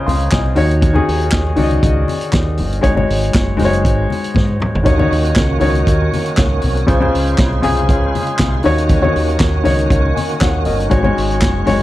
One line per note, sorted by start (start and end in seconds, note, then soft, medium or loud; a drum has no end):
0.00 0.59 C#3 medium
0.00 0.58 C#4 medium
0.00 0.59 F4 medium
0.00 0.58 A#4 medium
0.00 0.24 C5 medium
0.00 0.32 D#5 medium
0.07 0.28 C#2 medium
0.07 0.30 F5 medium
0.07 0.30 C6 medium
0.07 open hi-hat medium
0.07 high conga medium
0.20 closed hi-hat soft
0.32 0.58 C2 loud
0.32 0.80 D#5 medium
0.32 0.80 G#5 medium
0.32 kick loud
0.32 snare loud
0.32 clap medium
0.32 closed hi-hat medium
0.32 high conga medium
0.46 muted conga soft
0.55 0.99 D#2 loud
0.55 0.87 D#3 medium
0.55 0.87 D#4 medium
0.55 0.87 F#4 medium
0.55 0.88 C#5 medium
0.55 open hi-hat medium
0.55 low conga medium
0.71 closed hi-hat soft
0.82 kick loud
0.82 closed hi-hat medium
0.82 muted conga soft
0.82 low conga medium
0.93 1.34 D#3 medium
0.93 1.34 D#4 medium
0.93 1.34 F#4 medium
0.93 1.35 G#4 medium
0.93 muted conga soft
0.93 high conga medium
1.09 1.29 D#2 medium
1.09 open hi-hat medium
1.21 closed hi-hat soft
1.32 1.54 D#2 medium
1.32 kick loud
1.32 snare loud
1.32 clap medium
1.32 closed hi-hat medium
1.32 muted conga soft
1.47 muted conga soft
1.56 1.79 C#2 loud
1.56 2.21 D#3 medium
1.56 2.22 D#4 medium
1.56 2.22 F#4 medium
1.56 1.64 D5 medium
1.56 open hi-hat medium
1.56 high conga medium
1.56 low conga medium
1.63 2.25 D#5 medium
1.71 closed hi-hat soft
1.71 high conga medium
1.83 2.04 C#2 loud
1.83 kick loud
1.83 closed hi-hat medium
1.83 muted conga soft
2.08 open hi-hat medium
2.08 high conga medium
2.21 closed hi-hat medium
2.33 2.60 D#2 medium
2.33 kick loud
2.33 snare loud
2.33 clap medium
2.33 closed hi-hat medium
2.33 muted conga soft
2.33 high conga medium
2.57 2.80 G1 medium
2.57 open hi-hat medium
2.57 low conga medium
2.72 closed hi-hat medium
2.81 3.05 G#1 loud
2.81 2.91 G#3 medium
2.81 2.92 D#4 medium
2.81 2.92 F#4 medium
2.81 2.92 C#5 medium
2.81 kick loud
2.81 closed hi-hat medium
2.81 low conga medium
2.95 3.35 G#3 medium
2.95 3.36 D#4 medium
2.95 3.36 F#4 medium
2.95 3.36 C#5 medium
2.95 muted conga soft
2.95 high conga medium
3.09 3.30 G#1 loud
3.09 open hi-hat medium
3.24 closed hi-hat soft
3.34 3.56 F#1 medium
3.34 kick loud
3.34 snare loud
3.34 clap medium
3.34 closed hi-hat medium
3.34 muted conga soft
3.57 3.85 F#1 medium
3.57 4.23 G#3 medium
3.57 4.23 D#4 medium
3.57 4.23 F#4 medium
3.57 3.65 C5 medium
3.57 snare soft
3.57 open hi-hat medium
3.57 high conga medium
3.57 low conga medium
3.65 4.27 C#5 medium
3.72 closed hi-hat soft
3.72 high conga soft
3.85 4.06 G#1 medium
3.85 kick loud
3.85 closed hi-hat medium
4.10 open hi-hat medium
4.10 high conga medium
4.24 closed hi-hat soft
4.35 4.57 G#2 medium
4.35 kick loud
4.35 snare soft
4.35 high conga medium
4.48 muted conga soft
4.60 mid tom medium
4.60 low conga medium
4.75 4.84 G#1 medium
4.75 floor tom medium
4.84 5.07 D#2 loud
4.84 4.93 D#3 medium
4.84 6.86 D#3 medium
4.84 6.86 A#3 soft
4.84 6.86 C#4 medium
4.84 4.94 D#4 medium
4.84 4.94 F#4 medium
4.84 6.86 F#4 medium
4.84 4.94 C#5 medium
4.84 kick loud
4.84 closed hi-hat soft
4.84 muted conga soft
4.84 low conga medium
4.98 5.38 D#3 medium
4.98 5.38 D#4 medium
4.98 5.38 F#4 medium
4.98 5.38 C#5 medium
4.98 muted conga soft
4.98 high conga medium
5.12 5.32 D#2 medium
5.12 open hi-hat medium
5.25 closed hi-hat soft
5.36 5.57 C#2 medium
5.36 kick loud
5.36 snare loud
5.36 clap medium
5.36 closed hi-hat medium
5.36 muted conga soft
5.50 muted conga soft
5.60 5.83 C#2 medium
5.60 6.25 D#3 medium
5.60 6.25 D#4 medium
5.60 6.26 F#4 medium
5.60 6.26 C#5 medium
5.60 open hi-hat medium
5.60 high conga medium
5.60 low conga medium
5.75 closed hi-hat soft
5.75 high conga soft
5.87 6.08 D#2 medium
5.87 kick loud
5.87 closed hi-hat medium
5.87 muted conga soft
6.01 muted conga soft
6.13 open hi-hat medium
6.13 high conga medium
6.26 closed hi-hat medium
6.37 6.59 C#2 loud
6.37 kick loud
6.37 snare medium
6.37 clap medium
6.37 closed hi-hat medium
6.37 muted conga soft
6.37 high conga medium
6.62 6.84 C2 medium
6.62 open hi-hat medium
6.62 low conga medium
6.77 closed hi-hat soft
6.87 7.09 C#2 loud
6.87 6.96 C#3 medium
6.87 8.62 C#3 medium
6.87 8.63 G#3 medium
6.87 6.96 C#4 medium
6.87 8.63 F4 medium
6.87 6.96 F4 medium
6.87 8.63 C5 medium
6.87 6.96 C5 medium
6.87 kick loud
6.87 closed hi-hat medium
6.87 low conga medium
7.00 7.40 C#3 medium
7.00 7.40 C#4 medium
7.00 7.40 F4 medium
7.00 7.41 C5 medium
7.00 muted conga soft
7.00 high conga medium
7.15 7.35 C#2 medium
7.15 open hi-hat medium
7.27 closed hi-hat soft
7.38 7.60 C2 medium
7.38 kick loud
7.38 snare loud
7.38 clap medium
7.38 closed hi-hat medium
7.53 muted conga soft
7.62 7.89 C2 medium
7.62 8.27 C#3 medium
7.62 8.28 C#4 medium
7.62 8.28 F4 medium
7.62 8.28 G#4 loud
7.62 open hi-hat medium
7.62 high conga medium
7.62 low conga medium
7.77 closed hi-hat soft
7.77 high conga medium
7.89 8.10 C#2 medium
7.89 kick loud
7.89 closed hi-hat medium
8.04 muted conga soft
8.15 open hi-hat medium
8.15 high conga medium
8.27 closed hi-hat soft
8.39 8.60 C2 medium
8.39 kick loud
8.39 snare loud
8.39 clap medium
8.39 closed hi-hat medium
8.39 high conga medium
8.54 muted conga soft
8.63 9.07 D#2 loud
8.63 10.89 D#3 medium
8.63 8.95 D#3 medium
8.63 10.89 A#3 medium
8.63 11.83 C#4 medium
8.63 8.95 D#4 medium
8.63 11.83 F#4 medium
8.63 8.95 F#4 medium
8.63 8.96 C#5 loud
8.63 open hi-hat medium
8.63 low conga medium
8.78 closed hi-hat medium
8.89 kick loud
8.89 closed hi-hat medium
8.89 muted conga soft
8.89 low conga medium
9.02 9.42 D#3 medium
9.02 9.42 D#4 medium
9.02 9.42 F#4 medium
9.02 9.42 C#5 medium
9.02 high conga medium
9.16 9.36 D#2 medium
9.16 open hi-hat medium
9.29 closed hi-hat soft
9.40 9.61 D#2 loud
9.40 kick loud
9.40 snare loud
9.40 clap medium
9.40 closed hi-hat medium
9.40 muted conga soft
9.54 muted conga soft
9.63 9.87 C#2 medium
9.63 10.29 D#3 medium
9.63 10.29 D#4 medium
9.63 10.29 F#4 medium
9.63 10.16 C#5 medium
9.63 snare soft
9.63 open hi-hat medium
9.63 high conga medium
9.63 low conga medium
9.79 closed hi-hat soft
9.79 high conga soft
9.90 10.12 C#2 medium
9.90 kick loud
9.90 closed hi-hat medium
9.90 muted conga soft
10.06 muted conga soft
10.16 10.40 D#5 soft
10.16 10.40 G#5 medium
10.16 open hi-hat medium
10.16 high conga medium
10.29 closed hi-hat soft
10.40 10.69 D#2 medium
10.40 10.65 C#5 medium
10.40 10.65 F#5 medium
10.40 kick loud
10.40 snare loud
10.40 clap medium
10.40 closed hi-hat medium
10.40 high conga medium
10.54 muted conga soft
10.65 10.88 G1 medium
10.65 11.14 A#4 medium
10.65 11.14 D#5 medium
10.65 open hi-hat medium
10.65 low conga medium
10.80 closed hi-hat medium
10.90 11.13 G#1 loud
10.90 10.99 G#3 medium
10.90 11.83 G#3 medium
10.90 10.99 D#4 medium
10.90 11.00 F#4 medium
10.90 11.00 C#5 medium
10.90 kick loud
10.90 closed hi-hat soft
10.90 low conga medium
11.03 11.43 G#3 medium
11.03 11.43 D#4 medium
11.03 11.43 F#4 medium
11.03 11.44 C#5 medium
11.03 muted conga soft
11.03 high conga medium
11.18 11.42 G#1 medium
11.18 open hi-hat medium
11.31 closed hi-hat soft
11.42 11.63 F#1 medium
11.42 kick loud
11.42 snare loud
11.42 clap medium
11.42 closed hi-hat medium
11.42 muted conga soft
11.66 11.83 F#1 medium
11.66 11.83 G#3 medium
11.66 11.83 D#4 medium
11.66 11.83 F#4 medium
11.66 11.83 C#5 medium
11.66 snare soft
11.66 open hi-hat medium
11.66 high conga medium
11.66 low conga medium